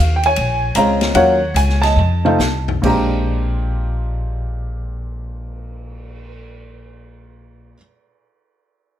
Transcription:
Already playing: F#4 F5
0.00 D#2
0.16 G5
0.23 C#5 G#5, ride
0.36 A#1, ride
0.75 C#2 G#3 C4 C#4 F4 A#5, hi-hat pedal, ride
1.01 snare, ride
1.15 D#2 F#3 A#3 C#4 F4 C#5 F#5, ride
1.54 C#2 G#5, hi-hat pedal, ride
1.69 snare
1.82 D#5 A5, snare, ride
1.96 F2, mid tom
2.25 A3 C4 D#4 F4, mid tom
2.39 C2, snare, hi-hat pedal
2.68 floor tom
2.82 A#1 A#2 G#3 C4 D4 G4, kick, crash
2.86 A#5
3.13 cymbal swell

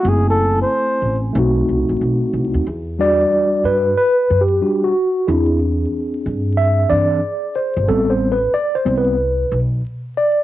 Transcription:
0.00 A3 F#4
0.04 F#1 C4 E4
0.08 G#4 G#5
0.30 A4
0.62 C5
1.02 A1
1.33 B1 A3 C4 D#4
1.39 F#4
1.69 C2
1.89 A1
2.01 B1
2.33 C2
2.54 D#2
2.67 E2
2.99 G3 D4 F#4 D5
3.64 G2 B4
3.97 B4
4.30 F#2
4.41 G4
4.61 G3 D4 F#4
4.84 F#4
5.28 E2 C4 D4 E4 G#4
6.26 G2
6.57 E5
6.89 G2 E3 C4 D4 D5
7.56 C5
7.77 G1
7.88 A1 G3 B3 C4 A4
8.10 C5
8.32 B4
8.54 D5
8.75 C5
8.85 C2 G3 B3 C4
8.98 B4
9.52 B1
10.17 D5

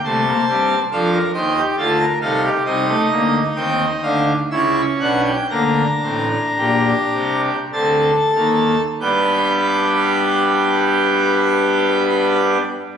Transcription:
0.04 C2 C3 A3 C5 A5
0.26 A#3
0.48 G2 G3 C4
0.92 F2 F3 D4 A4 F5
1.13 A#4
1.34 D#2 D#3 D#4 C5 G5
1.57 G4
1.78 D2 D3 F4 A4 A5
2.00 A#4
2.21 C2 C3 D#4 A4 F5
2.44 G4
2.65 C2 C3 C4 D#4 D#5
2.88 A3
3.11 D2 D3 A#3
3.56 D#2 D#3 C4 G5
4.02 D2 D3 D4 F5
4.51 C#2 C#3 C#4 E4 E5
5.00 B1 B2 D4 F#5
5.24 G5
5.50 D2 D3 A#3 D4 A#5
6.03 A1 A2 C4
6.30 D4
6.58 A#1 A#2 G4
7.13 C2 C3
7.73 D2 D3 C4 A4 A5
8.35 D#2 D#3 A#3
9.00 G2 G3 B3 D4 G4 B4 G5

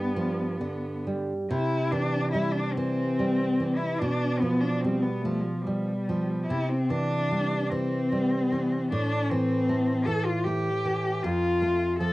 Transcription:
Already playing: G2 G3 B3
0.16 F3
0.61 D3
1.07 G3
1.51 C3 E4
1.91 E3 D4
2.32 G3 E4
2.52 D4
2.73 C4
2.77 E3
3.19 G3
3.60 E3
3.77 E4
3.98 B2 D4
4.39 F3 B3
4.60 D4
4.81 G3 C4
5.02 B3
5.21 A3
5.25 F3
5.42 F3
5.62 G3
5.67 G3
6.09 F3
6.46 C3 E4
6.69 C4
6.89 E3 D4
7.31 G3
7.70 E3 C4
8.12 G3
8.52 E3
8.92 A2 D4
9.29 E3 C4
9.69 A3
10.05 E3 A4
10.25 F4
10.43 A3 G4
10.85 E3
11.23 F2 F4
11.62 A3
11.99 F3 A4

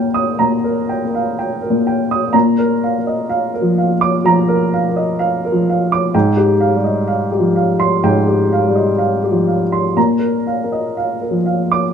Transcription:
Already playing: D#2 A#2 A#3 A#4 F5 G5 A#5
0.14 D#6
0.39 A#2 A#5
0.64 A#4
0.89 G5
1.05 A#3
1.15 F5
1.39 G5
1.62 A#4
1.70 A#2
1.87 G5
2.11 D#6
2.33 A#2 A#5
2.58 A#4
2.84 F5
2.98 A#3
3.07 D#5
3.30 F5
3.54 A#4
3.62 F3
3.78 F5
4.01 D6
4.25 F3 A#5
4.48 A#4
4.73 F5
4.89 A#3
4.96 D#5
5.19 F5
5.45 A#4
5.52 F3
5.70 F5
5.92 D6
6.14 G#2 G5
6.37 G4
6.60 F5
6.76 G3
6.84 D#5
7.08 F5
7.32 G4
7.39 F3
7.56 F5
7.80 C6
8.04 G#2 G5
8.28 G4
8.53 F5
8.68 G3
8.75 D#5
8.98 F5
9.23 G4
9.31 F3
9.47 F5
9.72 C6
9.97 A#2 A#5
10.19 A#4
10.47 F5
10.64 A#3
10.72 D#5
10.97 F5
11.21 A#4
11.31 F3
11.46 F5
11.72 D6

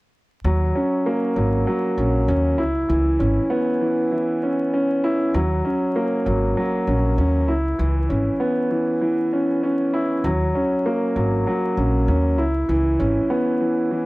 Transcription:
0.44 D#2 F#3
0.75 C#4
1.06 A#3
1.36 G#1 F#3
1.67 F#3
1.98 A#1 C#4
2.28 D#2 C#4
2.58 C#2 E4
2.89 C#2 E3
3.19 G#1 C#4
3.50 B3
3.81 E3
4.12 E3
4.43 C#4
4.74 C#4
5.04 E4
5.34 D#2 F#3
5.65 C#4
5.96 A#3
6.26 G#1 F#3
6.57 F#3
6.87 A#1 C#4
7.18 D#2 C#4
7.48 C#2 E4
7.78 C#2 E3
8.09 G#1 C#4
8.40 B3
8.71 E3
9.01 E3
9.33 C#4
9.63 C#4
9.94 E4
10.24 D#2 F#3
10.55 C#4
10.86 A#3
11.16 G#1 F#3
11.47 F#3
11.77 A#1 C#4
12.08 D#2 C#4
12.38 C#2 E4
12.68 C#2 E3
12.99 G#1 C#4
13.30 B3
13.60 E3
13.91 E3

